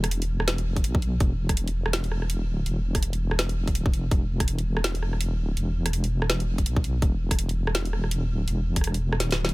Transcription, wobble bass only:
Already playing: E1
0.84 B1
1.21 E1
2.48 D1
2.66 E1
3.75 D1
3.93 F1
4.11 E1
5.39 D1
5.57 E1
6.66 B1
7.02 E1
8.29 D1
8.48 E1
9.21 D1

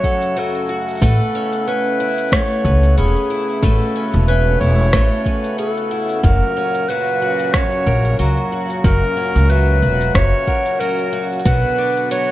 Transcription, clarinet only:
Already playing: C#5
0.38 A4
1.02 A4
1.68 B4
2.34 C#5
2.98 G#4
3.63 A4
4.27 B4
4.60 C#5
5.58 A4
6.23 A#4
6.89 B4
7.53 C#5
8.19 F#4
8.84 A#4
9.49 B4
10.15 C#5
10.80 A#4
11.45 B4
12.11 C#5

